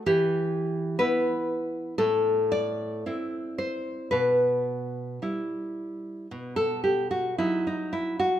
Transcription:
\new Staff \with { instrumentName = "Nylon-string guitar" } { \time 4/4 \key e \minor \tempo 4 = 56 << { g'4 b'4 a'8 d''4 c''8 | b'2~ b'16 a'16 g'16 fis'16 e'16 dis'16 e'16 fis'16 | } \\ { e4 <b e'>4 a,4 <c' e'>4 | b,4 <g e'>4 b,4 <fis dis'>4 | } >> }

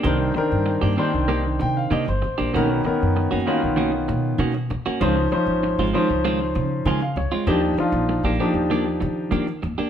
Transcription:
<<
  \new Staff \with { instrumentName = "Grand piano" } { \time 4/4 \key c \dorian \tempo 4 = 97 << { r2 r8 g''16 f''16 ees''16 c''8. | r1 | r2. aes''16 f''16 des''8 | r1 | } \\ { <ees c' d' bes'>8 <ees c' d' bes'>4 <ees c' d' c''>4. r4 | <dis b cis' ais'>8 <dis b cis' ais'>4 <dis b cis' f'>4. r4 | <f des' ees' c''>8 <f des' ees' c''>4 <f des' ees' c''>4. r4 | <f d' ees' g'>8 <f d' ees' f'>4 <f d' ees' g'>4. r4 | } >> }
  \new Staff \with { instrumentName = "Clean electric guitar" } { \time 4/4 \key c \dorian <ees bes d' g'>16 r4 <bes d' g'>16 <ees bes d' g'>16 r16 <ees bes d' g'>16 r8. <ees bes d' g'>16 r8 <bes d' g'>16 | <dis ais cis' fis'>16 r4 <ais cis' fis'>16 <dis ais cis' fis'>16 r16 <dis ais cis' fis'>16 r8. <dis ais cis' fis'>16 r8 <ais cis' fis'>16 | <ees aes c' f'>16 r4 <aes c' f'>16 <ees aes c' f'>16 r16 <ees aes c' f'>16 r8. <ees aes c' f'>16 r8 <aes c' f'>16 | <f bes d' g'>16 r4 <bes d' g'>16 <f bes d' g'>16 r16 <f bes d' g'>16 r8. <f bes d' g'>16 r8 <bes d' g'>16 | }
  \new Staff \with { instrumentName = "Upright bass" } { \clef bass \time 4/4 \key c \dorian c,8 r16 g,8 g,16 r16 c,8. c8 c16 g,,16 a,,16 bes,,16 | b,,8 r16 fis,8 fis,16 r16 b,,8. b,8 b,8 b,,16 r16 | des,8 r16 aes,,8 aes,,16 r16 des,8. des8 des8 des,16 r16 | ees,8 r16 bes,,8 bes,,16 r16 ees,8. ees8 ees8 ees,16 r16 | }
>>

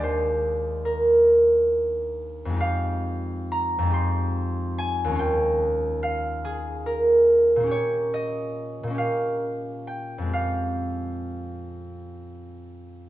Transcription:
<<
  \new Staff \with { instrumentName = "Harp" } { \time 6/8 \key f \minor \tempo 4. = 46 <c'' f'' g''>4 bes'2 | f''4 bes''8 c'''4 aes''8 | g''4 f''8 aes'8 bes'4 | des''8 ees''4 f''4 g''8 |
f''2. | }
  \new Staff \with { instrumentName = "Harp" } { \time 6/8 \key f \minor <ees, f aes d' g' bes'>2. | <f, aes ees' g'>4. <f, aes ees' g'>4. | <ees, aes des' f'>2. | <bes, bes des' g'>4. <bes, bes des' g'>4. |
<f, aes c' g'>2. | }
>>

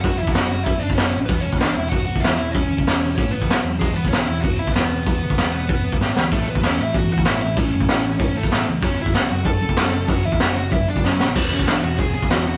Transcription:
<<
  \new Staff \with { instrumentName = "Lead electric guitar" } { \time 4/4 \key e \mixolydian \tempo 4 = 191 <fis' fis''>8 <e' e''>8 <fis' fis''>8 <fis' fis''>8 <e' e''>8 <d' d''>8 <cis' cis''>8. r16 | <b b'>8 <cis' cis''>8 <d' d''>8 <e' e''>8 <fis' fis''>8 <fis' fis''>8 <e' e''>8 <e' e''>8 | <cis' cis''>2 <cis' cis''>8 <b b'>4 r8 | <gis gis'>8 <b b'>8 <cis' cis''>8 <e' e''>8 <fis' fis''>8 <e' e''>8 <b b'>4~ |
<b b'>2. r4 | <a a'>8 <b b'>8 <cis' cis''>8 <e' e''>8 <fis' fis''>8 <fis' fis''>8 <e' e''>8 <e' e''>8 | <cis' cis''>2 <cis' cis''>8 <a a'>4 r8 | <cis' cis''>8 <e' e''>8 <fis' fis''>8 <fis' fis''>8 <a' a''>2 |
<fis' fis''>8 <e' e''>8 <fis' fis''>8 <fis' fis''>8 <e' e''>8 <d' d''>8 <cis' cis''>8. r16 | <b b'>8 <cis' cis''>8 <d' d''>8 <fis' fis''>8 <gis' gis''>8 <gis' gis''>8 <fis' fis''>8 <fis' fis''>8 | }
  \new Staff \with { instrumentName = "Distorted electric guitar" } { \clef bass \time 4/4 \key e \mixolydian <fis, cis fis>8 <fis, cis>8 <fis, cis fis>8 <fis, cis>8 <fis, cis>8 <fis, cis>8 <fis, cis fis>8 <fis, cis>8 | <e, b, e>8 <e, b,>8 <e, b, e>8 <e, b,>8 <e, b,>8 <e, b,>8 <e, b, e>8 <e, b,>8 | <e, b, e>8 <e, b,>8 <e, b, e>8 <e, b,>8 <a, e a>8 <a, e>8 <b, fis b>8 <b, fis>8 | <e, b, e>8 <e, b,>8 <e, b, e>8 <e, b,>8 <e, b,>8 <e, b,>8 <e, b, e>8 <e, b,>8 |
<e, b, e>8 <e, b,>8 <e, b, e>8 <e, b,>8 <e, b,>8 <e, b,>8 <a, e a>8 <a, e>8 | <a, e a>8 <a, e>8 <a, e a>8 <a, e>8 <a, e>8 <a, e>8 <a, e a>8 <a, e>8 | <a, e a>8 <a, e>8 <a, e a>8 <a, e>8 <a, e>8 <a, e>8 <a, e a>8 <a, e>8 | <fis, cis fis>8 <fis, cis>8 <fis, cis fis>8 <fis, cis>8 <fis, cis>8 <fis, cis>8 <fis, cis fis>8 <fis, cis>8 |
<fis, cis fis>8 <fis, cis>8 <fis, cis fis>8 <fis, cis>8 <fis, cis>8 <fis, cis>8 <fis, cis fis>8 <fis, cis>8 | <e, b, e>8 <e, b,>8 <e, b, e>8 <e, b,>8 <e, b,>8 <e, b,>8 <e, b, e>8 <e, b,>8 | }
  \new Staff \with { instrumentName = "Distorted electric guitar" } { \clef bass \time 4/4 \key e \mixolydian r1 | r1 | r1 | r1 |
r1 | <a, e a>8 <a, e>8 <a, e a>8 <a, e>8 <a, e>8 <a, e>8 <a, e a>8 <a, e>8 | <a, e a>8 <a, e>8 <a, e a>8 <a, e>8 <a, e>8 <a, e>8 <a, e a>8 <a, e>8 | <fis, cis fis>8 <fis, cis>8 <fis, cis fis>8 <fis, cis>8 <fis, cis>8 <fis, cis>8 <fis, cis fis>8 <fis, cis>8 |
<fis, cis fis>8 <fis, cis>8 <fis, cis fis>8 <fis, cis>8 <fis, cis>8 <fis, cis>8 <fis, cis fis>8 <fis, cis>8 | <e, b, e>8 <e, b,>8 <e, b, e>8 <e, b,>8 <e, b,>8 <e, b,>8 <e, b, e>8 <e, b,>8 | }
  \new Staff \with { instrumentName = "Picked electric bass" } { \clef bass \time 4/4 \key e \mixolydian fis,,8 e,8 fis,,4 fis,,8 fis,,8 fis,,8 a,,8 | e,,8 e,,8 b,,8 e,8 e,,8 b,,8 e,,4 | e,,8 d,8 e,,4 a,,8 a,,8 b,,8 e,8 | e,,8 e,,8 b,,8 e,8 e,,8 b,,8 e,,4 |
e,,8 d,8 e,,4 e,,8 e,,8 a,,8 d,8 | a,,8 a,,8 e,8 a,8 a,,8 e,8 a,,4 | a,,8 fis,8 a,,4 a,,8 a,,8 a,,8 cis,8 | fis,,8 fis,,8 cis,8 fis,8 fis,,8 cis,8 fis,,4 |
fis,,8 e,8 fis,,4 fis,,8 fis,,8 fis,,8 a,,8 | e,,8 e,,8 b,,8 e,8 e,,8 b,,8 e,,4 | }
  \new DrumStaff \with { instrumentName = "Drums" } \drummode { \time 4/4 <hho bd>8. bd16 <hho sn>4 <hho bd>8. bd16 <hho sn>4 | <hho bd>8. bd16 <hho sn>4 <hho bd>8. bd16 <hho sn>4 | <hho bd>8. bd16 <hho sn>4 <hho bd>8. bd16 <hho sn>4 | <hho bd>8. bd16 <hho sn>4 <hho bd>8. bd16 <hho sn>4 |
<hho bd>8. bd16 <hho sn>4 <hho bd>8. bd16 sn8 sn8 | <hho bd>8. bd16 <hho sn>4 <hho bd>8. bd16 <hho sn>4 | <hho bd>8. bd16 <hho sn>4 <hho bd>8. bd16 <hho sn>4 | <hho bd>8. bd16 <hho sn>4 <hho bd>8. bd16 <hho sn>4 |
<hho bd>8. bd16 <hho sn>4 <hho bd>8. bd16 sn8 sn8 | <cymc hho bd>8. bd16 <hho sn>4 <hho bd>8. bd16 <hho sn>4 | }
>>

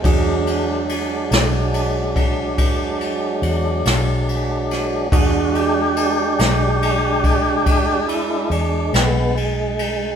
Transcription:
<<
  \new Staff \with { instrumentName = "Tine electric piano" } { \time 12/8 \key e \mixolydian \tempo 4. = 47 <d' fis' gis'>1. | <d' fis' gis'>1. | }
  \new Staff \with { instrumentName = "Tonewheel organ" } { \time 12/8 \key e \mixolydian r1. | r8 <fis' g'>2. e'8 d'8 b8 gis4 | }
  \new Staff \with { instrumentName = "Tonewheel organ" } { \time 12/8 \key e \mixolydian <fis gis d'>1. | <gis d' fis'>1. | }
  \new Staff \with { instrumentName = "Fingered electric bass" } { \clef bass \time 12/8 \key e \mixolydian e,4. b,,4. e,4 e,8 b,,4. | e,4. b,,4. e,4 e,8 b,,4. | }
  \new DrumStaff \with { instrumentName = "Drums" } \drummode { \time 12/8 <bd cymr>8 cymr8 cymr8 <cymr sn>8 cymr8 <bd cymr>8 <bd cymr>8 cymr8 cymr8 <cymr sn>8 cymr8 <cymr sn>8 | <bd cymr>8 cymr8 cymr8 <cymr sn>8 cymr8 <bd cymr>8 <bd cymr>8 cymr8 cymr8 <cymr sn>8 cymr8 cymr8 | }
>>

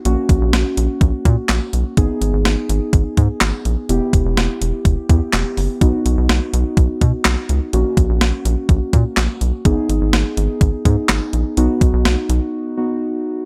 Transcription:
<<
  \new Staff \with { instrumentName = "Synth keys" } { \time 4/4 \key b \major \tempo 4 = 125 <ais cis' fis'>1 | <b dis' gis'>1 | <b e' g'>2~ <b e' g'>8 <b e' g'>4. | <b dis' fis'>1 |
<ais cis' fis'>1 | <b dis' gis'>2~ <b dis' gis'>8 <b dis' gis'>4. | <b dis' fis'>2~ <b dis' fis'>8 <b dis' fis'>4. | }
  \new Staff \with { instrumentName = "Analog synth bass" } { \clef bass \time 4/4 \key b \major ais,,16 r16 ais,,16 ais,,16 ais,,16 r16 ais,,16 r16 ais,,16 r16 ais,16 r16 ais,,16 r16 b,,16 r16 | gis,,16 r16 gis,,16 gis,,16 gis,,16 r16 gis,,16 r16 gis,,16 r16 gis,16 r16 gis,,16 r16 ais,,16 r16 | e,,16 r16 e,,16 e,,16 e,,16 r16 e,,16 r16 e,,16 r16 e,16 r16 e,,16 r16 fis,,16 r16 | b,,16 r16 b,,16 b,,16 b,,16 r16 b,,16 r16 b,,16 r16 b,16 r16 b,,16 r16 cis,16 r16 |
ais,,16 r16 ais,,16 ais,,16 ais,,16 r16 ais,,16 r16 ais,,16 r16 ais,16 r16 ais,,16 r16 b,,16 r16 | gis,,16 r16 gis,,16 gis,,16 gis,,16 r16 gis,,16 r16 gis,,16 r16 gis,16 r16 gis,,16 r16 ais,,16 r16 | b,,16 r16 b,,16 b,,16 b,,16 r16 b,,16 r2 r16 | }
  \new DrumStaff \with { instrumentName = "Drums" } \drummode { \time 4/4 hh8 <hh bd>8 <hh sn>8 hh8 <hh bd>8 <hh bd>8 <hc hh sn>8 hh8 | <hh bd>8 hh8 <hh sn>8 hh8 <hh bd>8 <hh bd>8 <hc hh sn>8 hh8 | hh8 <hh bd>8 <hh sn>8 hh8 <hh bd>8 <hh bd>8 <hc hh sn>8 hho8 | <hh bd>8 hh8 <hh sn>8 hh8 <hh bd>8 <hh bd>8 <hc hh sn>8 hh8 |
hh8 <hh bd>8 <hh sn>8 hh8 <hh bd>8 <hh bd>8 <hc hh sn>8 hh8 | <hh bd>8 hh8 <hh sn>8 hh8 <hh bd>8 <hh bd>8 <hc hh sn>8 hh8 | hh8 <hh bd>8 <hh sn>8 hh8 r4 r4 | }
>>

